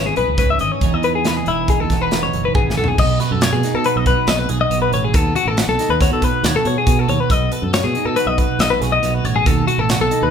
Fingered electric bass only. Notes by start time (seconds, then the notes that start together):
0.18 B1
0.28 C#2
0.61 G#1
0.82 E1
0.93 E2
1.47 E1
1.80 E2
1.90 E1
2.33 F#1
2.55 G#1
2.77 B1
2.98 B1
3.31 F#2
3.53 B2
3.74 B2
3.96 B1
4.28 B1
4.50 B1
4.70 B1
4.92 A1
5.14 D#2
5.45 A1
5.67 B1
5.89 D#2
6.11 B2
6.43 D#2
6.65 B2
6.87 B2
7.08 D#2
7.30 B1
7.62 F#2
7.84 B2
8.05 B2
8.26 B1
8.59 B1
8.81 B1
9.03 B1
9.25 A1
9.46 D#2
9.78 A1
10.00 B1
10.22 D#2